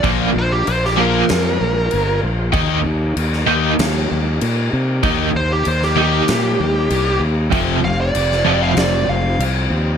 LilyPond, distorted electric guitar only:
\new Staff \with { instrumentName = "Distorted electric guitar" } { \clef bass \time 4/4 \key ees \lydian \tempo 4 = 96 <bes, f bes>8 r4 <bes, f bes>8 r2 | <ees bes ees'>8 r4 <ees bes ees'>8 r2 | <ees bes ees'>8 r4 <ees bes ees'>8 r2 | <f, c f>8 r4 <f, c f>8 r2 | }